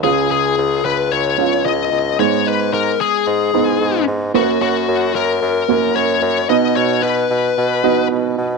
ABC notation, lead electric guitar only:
X:1
M:4/4
L:1/8
Q:1/4=112
K:Dbmix
V:1 name="Lead electric guitar"
A A2 c d2 e2 | d c B A4 z | G G2 B3 d2 | ^d _d =B4 z2 |]